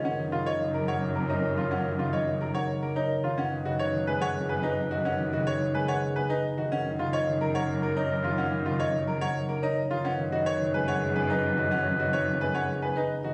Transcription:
<<
  \new Staff \with { instrumentName = "Marimba" } { \time 3/4 \key fis \major \tempo 4 = 108 fis''16 r16 eis''16 dis''16 r16 ais''16 fis''16 r16 ais''16 cis''16 r16 eis''16 | fis''16 r16 eis''16 dis''16 r16 ais''16 fis''16 r16 ais''16 cis''16 r16 eis''16 | fis''16 r16 dis''16 cis''16 r16 gis''16 fis''16 r16 gis''16 b'16 r16 dis''16 | fis''16 r16 dis''16 cis''16 r16 gis''16 fis''16 r16 gis''16 b'16 r16 dis''16 |
fis''16 r16 eis''16 dis''16 r16 ais''16 fis''16 r16 ais''16 cis''16 r16 eis''16 | fis''16 r16 eis''16 dis''16 r16 ais''16 fis''16 r16 ais''16 cis''16 r16 eis''16 | fis''16 r16 dis''16 cis''16 r16 gis''16 fis''16 r16 gis''16 b'16 r16 dis''16 | fis''16 r16 dis''16 cis''16 r16 gis''16 fis''16 r16 gis''16 b'16 r16 dis''16 | }
  \new Staff \with { instrumentName = "Clarinet" } { \time 3/4 \key fis \major ais'2.~ | ais'2~ ais'8. r16 | b'2.~ | b'2~ b'8. r16 |
ais'2.~ | ais'2~ ais'8. r16 | b'2.~ | b'2~ b'8. r16 | }
  \new Staff \with { instrumentName = "Grand piano" } { \time 3/4 \key fis \major cis'16 r16 eis'16 cis''16 r16 ais'16 cis''16 r16 ais'16 dis'16 r16 eis'16 | cis'16 r16 eis'16 cis''16 r16 ais'16 cis''16 r16 ais'16 dis'16 r16 eis'16 | cis'16 r16 fis'16 cis''16 r16 b'16 cis''16 r16 b'16 dis'16 r16 fis'16 | cis'16 r16 fis'16 cis''16 r16 b'16 cis''16 r16 b'16 dis'16 r16 fis'16 |
cis'16 r16 eis'16 cis''16 r16 ais'16 cis''16 r16 ais'16 dis'16 r16 eis'16 | cis'16 r16 eis'16 cis''16 r16 ais'16 cis''16 r16 ais'16 dis'16 r16 eis'16 | cis'16 r16 fis'16 cis''16 r16 b'16 cis''16 r16 b'16 dis'16 r16 fis'16 | cis'16 r16 fis'16 cis''16 r16 b'16 cis''16 r16 b'16 dis'16 r16 fis'16 | }
  \new Staff \with { instrumentName = "Harp" } { \clef bass \time 3/4 \key fis \major r16 dis16 cis8 dis16 fis8. ais8. dis16~ | dis16 dis16 cis8 dis16 fis8. ais8. dis16 | r16 dis16 cis8 dis16 gis8. b8. dis16~ | dis16 dis16 cis8 dis16 gis8. b8. dis16 |
r16 dis16 cis8 dis16 fis8. ais8. dis16~ | dis16 dis16 cis8 dis16 fis8. ais8. dis16 | r16 dis16 cis8 dis16 gis8 cis'16 b8. dis16~ | dis16 dis16 cis8 dis16 gis8 cis'16 b8. dis16 | }
  \new Staff \with { instrumentName = "Cello" } { \clef bass \time 3/4 \key fis \major fis,2.~ | fis,2. | fis,2.~ | fis,2. |
fis,2.~ | fis,2. | fis,2.~ | fis,2. | }
>>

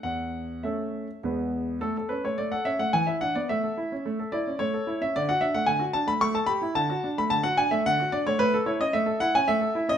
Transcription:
\new Staff \with { instrumentName = "Grand piano" } { \time 3/4 \key a \major \tempo 4 = 109 << { fis''4 e''4 r4 | a'8 b'16 cis''16 d''16 fis''16 e''16 fis''16 gis''16 e''16 fis''16 d''16 | e''4. d''8 cis''8. e''16 | d''16 fis''16 e''16 fis''16 gis''8 a''16 b''16 cis'''16 a''16 b''8 |
a''8. b''16 a''16 fis''16 gis''16 e''16 fis''8 d''16 cis''16 | \key a \lydian b'8 cis''16 dis''16 e''8 fis''16 gis''16 e''8. dis''16 | } \\ { e,4 <a cis' a'>4 <e, gis b b'>4 | a16 a'16 cis'16 a16 a16 a'16 cis'16 a16 e16 e'16 d'16 b16 | a16 a'16 e'16 cis'16 a16 a'16 e'16 cis'16 a16 a'16 e'16 cis'16 | d16 fis'16 d'16 a16 d16 fis'16 d'16 a16 a16 a'16 g'16 e'16 |
d16 fis'16 d'16 a16 d16 fis'16 d'16 a16 d16 fis'16 d'16 a16 | a16 a'16 e'16 cis'16 a16 a'16 e'16 cis'16 a16 a'16 e'16 cis'16 | } >> }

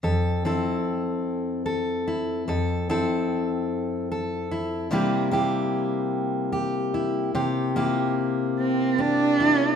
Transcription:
<<
  \new Staff \with { instrumentName = "Steel-string acoustic guitar" } { \time 6/8 \key f \major \tempo 4. = 49 << { a'8 <c' e' a'>4. a'8 e'8 | a'8 <c' e' a'>4. a'8 e'8 | <g bes e' g'>8 <bes e' g'>4. g'8 e'8 | g'8 <bes e' g'>4. g'8 e'8 | } \\ { f,2. | f,2. | c2. | c2. | } >> }
  \new Staff \with { instrumentName = "Cello" } { \time 6/8 \key f \major r2. | r2. | r2. | r4. c'8 d'4 | }
>>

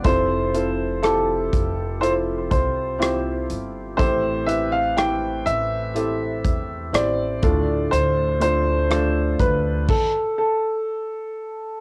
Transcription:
<<
  \new Staff \with { instrumentName = "Grand piano" } { \time 4/4 \key d \dorian \tempo 4 = 61 c''4 a'4 c''8 c''4 r8 | c''8 e''16 f''16 g''8 e''4. d''4 | c''8 c''4 b'8 a'8 a'4. | }
  \new Staff \with { instrumentName = "Felt piano" } { \time 4/4 \key d \dorian <c' e' f' a'>8 <c' e' f' a'>8 <c' e' f' g'>4 <c' e' f' a'>4 <c' e' f' g'>4 | <c' e' g' a'>8 <c' e' g' b'>8 <c' e' g' c''>4 <c' e' g' a'>4 <c' e' g' c''>8 <a d' f' a'>8~ | <a d' f' a'>8 <a d' f' c''>8 <a d' f' a'>4 r2 | }
  \new Staff \with { instrumentName = "Felt piano" } { \clef bass \time 4/4 \key d \dorian c4. r2 r8 | <a, e>4. r2 a,8~ | a,4 r2. | }
  \new Staff \with { instrumentName = "Upright bass" } { \clef bass \time 4/4 \key d \dorian f,,4. f,,4 c,4 g,,8 | a,,4. a,,4 e,8 a,,8 d,8 | d,4. d,8 r2 | }
  \new DrumStaff \with { instrumentName = "Drums" } \drummode { \time 4/4 <hh bd>8 hh8 <hh ss>8 <hh bd>8 hh8 <hh bd>8 <hh ss>8 hh8 | <hh bd>8 hh8 <hh ss>8 hh8 hh8 <hh bd>8 <hh ss>8 <hh bd>8 | hh8 hh8 <hh ss>8 <hh bd>8 <cymc bd>4 r4 | }
>>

